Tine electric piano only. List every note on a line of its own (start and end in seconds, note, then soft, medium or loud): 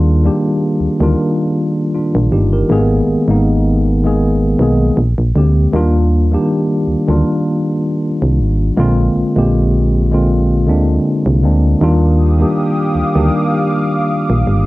0.00 0.24 D#3 loud
0.00 0.25 G3 medium
0.00 0.25 A#3 medium
0.00 0.26 D4 medium
0.00 1.03 F4 loud
0.00 2.71 G#4 medium
0.24 0.73 D#3 medium
0.24 0.74 G3 medium
0.24 0.74 A#3 medium
0.24 0.75 D4 medium
0.24 0.75 G4 medium
1.00 1.99 D#3 medium
1.00 2.00 G3 medium
1.00 2.00 A#3 medium
1.00 1.94 D4 medium
1.00 1.93 F4 medium
1.95 2.31 D4 medium
1.95 2.30 F4 medium
2.33 2.52 D#4 medium
2.33 2.52 G4 medium
2.53 2.89 G4 medium
2.53 2.89 A#4 medium
2.69 3.07 D#3 loud
2.69 3.08 G#3 medium
2.69 3.08 A#3 medium
2.69 3.08 B3 medium
2.69 3.09 G#4 loud
3.27 3.77 D#3 medium
3.27 3.77 G#3 medium
3.27 3.78 A#3 medium
3.27 3.78 B3 medium
3.27 3.79 D#4 medium
4.03 4.41 D#3 medium
4.03 4.42 G#3 medium
4.03 4.42 A#3 medium
4.03 4.43 B3 medium
4.03 4.43 G#4 medium
4.59 4.97 D#3 medium
4.59 4.98 G#3 medium
4.59 4.98 A#3 medium
4.59 4.98 B3 medium
4.59 4.99 G#4 medium
5.35 5.61 D3 medium
5.35 5.62 G#3 medium
5.35 5.62 A#3 medium
5.35 5.63 C4 medium
5.35 5.63 G4 medium
5.73 6.11 D#3 loud
5.73 6.11 G3 medium
5.73 6.12 A#3 medium
5.73 6.12 D4 medium
5.73 6.12 F4 loud
6.31 6.81 D#3 medium
6.31 6.81 G3 medium
6.31 6.82 A#3 medium
6.31 6.82 D4 medium
6.31 6.82 G4 medium
7.07 8.07 D#3 medium
7.07 8.07 G3 medium
7.07 8.08 A#3 medium
7.07 8.08 D4 medium
7.07 8.08 F4 medium
8.77 9.15 D3 loud
8.77 9.15 G#3 medium
8.77 9.15 A#3 loud
8.77 9.16 C4 medium
8.77 9.16 F4 loud
9.35 9.85 D3 medium
9.35 9.85 G#3 medium
9.35 9.86 A#3 medium
9.35 9.86 C4 medium
9.35 9.86 G4 medium
10.11 10.49 D3 medium
10.11 10.50 G#3 medium
10.11 10.50 A#3 medium
10.11 10.50 C4 medium
10.11 10.51 F4 medium
10.66 11.18 D3 medium
10.66 11.18 G#3 medium
10.66 11.19 A#3 medium
10.66 11.19 C4 medium
10.66 11.19 D4 medium
11.42 11.69 D3 medium
11.42 11.69 G#3 medium
11.42 11.70 A#3 medium
11.42 11.70 C4 medium
11.42 11.70 D4 medium
11.80 12.19 D#3 medium
11.80 12.19 G3 medium
11.80 12.19 A#3 medium
11.80 12.20 D4 medium
11.80 12.20 F4 loud
12.39 12.88 D#3 medium
12.39 12.89 G3 medium
12.39 12.89 A#3 medium
12.39 12.90 D4 medium
12.39 12.90 G4 medium
13.15 14.15 D#3 medium
13.15 14.15 G3 medium
13.15 14.15 A#3 medium
13.15 14.16 D4 medium
13.15 14.16 G4 medium